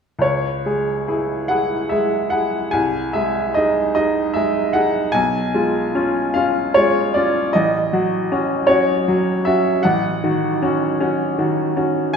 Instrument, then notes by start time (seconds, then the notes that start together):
upright piano
0.19 C#2 C#5
0.66 G#3 G#4
1.08 E4 G#4
1.48 E4 G#4 F#5
1.89 G#3 G#4 E5
2.30 E4 G#4 F#5
2.71 C2 G#5
3.13 G#3 G#4 E5
3.54 D#4 G#4 D#5
3.95 D#4 G#4 D#5
4.34 G#3 G#4 E5
4.73 D#4 G#4 F#5
5.12 B1 G#5
5.54 G#3 F4
5.95 C#4 F4
6.34 C#4 F4 F5
6.74 G#3 F4 C#5
7.14 C#4 F4 D5
7.53 A1 D#5
7.93 F#3 F#4
8.32 C#4 F#4
8.67 C#4 F#4 C#5
9.08 F#3 F#4
9.45 C#4 F#4 E5
9.83 A1 F#5
10.24 D#3 F#4
10.62 C#4 F#4
11.00 C#4 F#4
11.38 D#3 F#4
11.76 C#4 F#4
12.13 G#5